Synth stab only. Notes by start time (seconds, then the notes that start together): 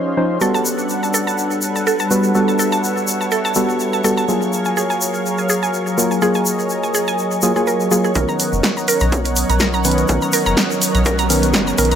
Already playing: F3 C#4 D#4 C5
0.17 F3 C#4 D#4 C5
0.41 G3 B3 F#4 A4
2.11 G3 B3 F#4 B4
2.35 G3 B3 F#4 A4
3.56 G3 B3 F#4 A4
4.04 G3 B3 F#4 A4
4.28 F#3 A#3 F4 G#4
5.98 F#3 A#3 F4 A#4
6.22 F#3 A#3 F4 G#4
7.43 F#3 A#3 F4 G#4
7.56 F#3 A#3 F4 G#4
7.91 F#3 A#3 F4 G#4
8.15 D#3 B3 C#4 A#4
9.85 D#3 B3 C#4 B4
10.09 D#3 B3 C#4 A#4
11.30 D#3 B3 C#4 A#4
11.78 D#3 B3 C#4 A#4